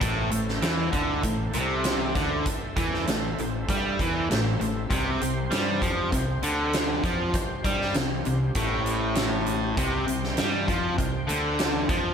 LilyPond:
<<
  \new Staff \with { instrumentName = "Tonewheel organ" } { \time 4/4 \key a \minor \tempo 4 = 99 <e' a' c''>1 | <a' c'' e''>1 | <c' g' c''>1 | <g' c''>1 |
<c'' g''>1 | }
  \new Staff \with { instrumentName = "Distorted electric guitar" } { \clef bass \time 4/4 \key a \minor a,8 a,8 e8 d8 a,8 c4 d8 | r8 e8 a,8 a,8 g8 e8 a,8 a,8 | c8 c8 g8 f8 c8 d4 f8 | r8 g8 c8 c8 a,2 |
c8 c8 g8 f8 c8 d4 f8 | }
  \new Staff \with { instrumentName = "Fingered electric bass" } { \clef bass \time 4/4 \key a \minor a,,8 a,,8 e,8 d,8 a,,8 c,4 d,8 | r8 e,8 a,,8 a,,8 g,8 e,8 a,,8 a,,8 | c,8 c,8 g,8 f,8 c,8 d,4 f,8 | r8 g,8 c,8 c,8 a,,2 |
c,8 c,8 g,8 f,8 c,8 d,4 f,8 | }
  \new DrumStaff \with { instrumentName = "Drums" } \drummode { \time 4/4 <hh bd>8 hh16 sn16 <hh sn>8 <hh bd>8 <hh bd>8 hh8 <hh sn>8 <hh bd sn>8 | <hh bd>8 <hh bd>16 sn16 <hh sn>8 hh8 <hh bd>8 <hh bd>8 <hh sn>8 hh8 | <hh bd>8 hh8 <hh sn>8 <hh bd>8 <hh bd>8 hh8 <hh sn>8 <hh bd>8 | <hh bd>8 <hh bd>16 sn16 <hh sn>8 hh8 <hh bd>8 hh8 <hh sn>8 hh8 |
<hh bd>8 hh16 sn16 <hh sn>8 <hh bd>8 <hh bd>8 hh8 <hh sn>8 <hh bd>8 | }
>>